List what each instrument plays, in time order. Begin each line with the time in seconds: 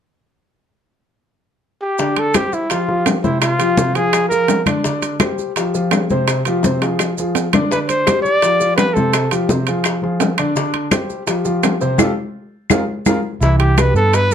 1.82 trumpet G4
1.98 grand piano D3 D4 D5, high bongo, high conga, maracas
2.16 trumpet A4, high bongo, high conga, high timbale
2.34 grand piano G3 G4 C5, trumpet G4, high bongo, high conga, high timbale, low timbale, claves, maracas
2.53 trumpet E4, high bongo, high conga, maracas
2.70 grand piano F3 F4 G4, trumpet F4, high bongo, high conga, high timbale, maracas
2.88 grand piano F3 F4 G4, high bongo, high conga
3.06 high bongo, low bongo, high conga, high timbale, low timbale, claves, maracas
3.24 grand piano C3 C4 C5, trumpet E4, high conga, maracas
3.40 trumpet F4, high bongo, high conga, high timbale, claves, maracas
3.59 grand piano F3 F4 G4, high bongo, high conga, high timbale, maracas
3.77 grand piano C3 C4 C5, high bongo, high conga, low timbale, maracas
3.95 grand piano F3 F4 G#4, trumpet G#4, high bongo, high timbale, maracas
4.13 high bongo, high conga, high timbale, claves, maracas
4.29 grand piano F3 F4 G#4, trumpet A#4, high bongo, high conga, maracas
4.48 high bongo, low bongo, high conga, high timbale, low timbale, maracas
4.66 grand piano D3 D4 D5, high conga, high timbale, claves, maracas
4.84 grand piano D3 D4 D5, high bongo, high conga, maracas
5.02 high bongo, high conga, high timbale, maracas
5.20 grand piano G3 G4 C5, high bongo, high conga, high timbale, low timbale, claves, maracas
5.38 high bongo, high conga, maracas
5.56 grand piano F3 F4 G4, high bongo, high conga, high timbale, maracas
5.74 grand piano F3 F4 G4, high bongo, high conga, maracas
5.91 high bongo, low bongo, high conga, high timbale, low timbale, claves, maracas
6.10 grand piano C3 C4 C5, high conga, maracas
6.28 high bongo, high conga, high timbale, claves, maracas
6.45 grand piano F3 F4 G4, high bongo, high conga, high timbale, maracas
6.63 grand piano C3 C4 C5, high bongo, high conga, low timbale, maracas
6.82 grand piano F3 F4 G#4, high bongo, high timbale, maracas
6.99 high bongo, high conga, high timbale, claves, maracas
7.18 grand piano F3 F4 G#4, high conga, maracas
7.35 high conga, high timbale, low timbale, maracas
7.53 grand piano D3 D4 D5, low bongo, high conga, high timbale, claves, maracas
7.71 grand piano D3 D4 D5, trumpet B4, high bongo, high conga, maracas
7.88 trumpet C5, high bongo, high conga, high timbale, maracas
8.07 grand piano G3 G4 C5, high bongo, high conga, high timbale, low timbale, claves, maracas
8.22 trumpet D5, high bongo, high conga, maracas
8.42 grand piano F3 F4 G4, high bongo, high conga, high timbale, maracas
8.60 grand piano F3 F4 G4, high bongo, high conga, maracas
8.77 trumpet B4, high bongo, low bongo, high conga, high timbale, low timbale, claves, maracas
8.94 grand piano C3 C4 C5, trumpet A4, high conga, maracas
9.13 high bongo, high conga, high timbale, claves, maracas
9.31 grand piano F3 F4 G4, high bongo, high conga, high timbale, maracas
9.49 grand piano C3 C4 C5, high bongo, high conga, low timbale, maracas
9.67 grand piano F3 F4 G#4, high bongo, high timbale, maracas
9.84 high bongo, high conga, high timbale, claves, maracas
10.02 grand piano F3 F4 G#4, high bongo, high conga
10.20 high bongo, low bongo, high conga, high timbale, low timbale, maracas
10.38 grand piano D3 D4 D5, high timbale, claves, maracas
10.55 grand piano D3 D4 D5, high bongo, high conga, maracas
10.74 high bongo, high conga, high timbale
10.91 grand piano G3 G4 C5, high bongo, high conga, high timbale, low timbale, claves, maracas
11.10 high bongo, high conga, maracas
11.27 grand piano F3 F4 G4, high bongo, high conga, high timbale, maracas
11.45 grand piano F3 F4 G4, high bongo, high conga, maracas
11.63 high bongo, low bongo, high conga, high timbale, low timbale, claves, maracas
11.81 grand piano C3 C4 C5, maracas
11.98 grand piano F4 G4 A4, high bongo, high conga, high timbale, claves, maracas
12.70 grand piano F4 G#4 A#4, high bongo, high conga, high timbale, claves, maracas
13.06 grand piano F4 G#4 A#4, high bongo, high conga, high timbale, claves, maracas
13.41 fingered electric bass C2, grand piano E3 E4, trumpet E4, high bongo, high conga, maracas
13.59 trumpet G4, high bongo, high conga, high timbale
13.78 grand piano G3 G4, trumpet B4, high bongo, high conga, high timbale, low timbale, claves, maracas
13.94 fingered electric bass G2, grand piano B3 B4, trumpet A4, high bongo, high conga, maracas
14.13 trumpet B4, high bongo, high conga, high timbale, maracas
14.31 high conga, maracas